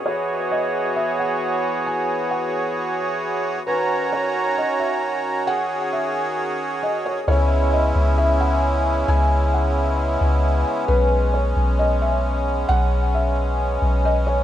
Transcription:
<<
  \new Staff \with { instrumentName = "Felt piano" } { \time 4/4 \key cis \dorian \tempo 4 = 133 cis''4 dis''4 e''8 fis''8 r4 | gis''4 fis''4 r2 | b'4 cis''4 dis''8 e''8 r4 | fis''4 e''4 r4 dis''8 cis''8 |
cis''4 dis''4 e''8 fis''8 r4 | gis''4 fis''4 r2 | b'4 cis''4 dis''8 e''8 r4 | fis''4 e''4 r4 dis''8 cis''8 | }
  \new Staff \with { instrumentName = "Accordion" } { \time 4/4 \key cis \dorian << { gis'1~ | gis'1 | ais''1 | gis'1 |
cis'1~ | cis'1~ | cis'1~ | cis'1 | } \\ { <b fis'>1~ | <b fis'>1 | <cis' fis'>1~ | <cis' fis'>1 |
<gis b>1~ | <gis b>1~ | <gis b>1~ | <gis b>1 | } >> }
  \new Staff \with { instrumentName = "Accordion" } { \time 4/4 \key cis \dorian <e cis''>1~ | <e cis''>1 | <dis cis''>1~ | <dis cis''>1 |
<cis e'>1~ | <cis e'>1 | r1 | r1 | }
  \new Staff \with { instrumentName = "808-style bass" } { \clef bass \time 4/4 \key cis \dorian r1 | r1 | r1 | r1 |
cis,4. cis,2~ cis,8 | cis,2~ cis,8 cis,4 r8 | b,,4. b,,2~ b,,8 | b,,2~ b,,8 b,,4. | }
>>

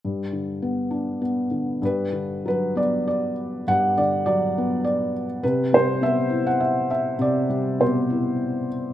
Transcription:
<<
  \new Staff \with { instrumentName = "Felt piano" } { \time 3/4 \key g \major \tempo 4 = 100 r2. | b'4 b'8 d''8 d''4 | fis''8 d''8 d''4 d''8. r16 | b'8 c''8 e''8. fis''16 e''8 e''8 |
d''4 c''4. r8 | }
  \new Staff \with { instrumentName = "Felt piano" } { \clef bass \time 3/4 \key g \major g,8 d8 b8 d'8 b8 d8 | g,8 d8 fis8 b4. | g,8 d8 fis8 b4. | c8 g8 b8 e'4. |
c8 g8 b,8 e'4. | }
>>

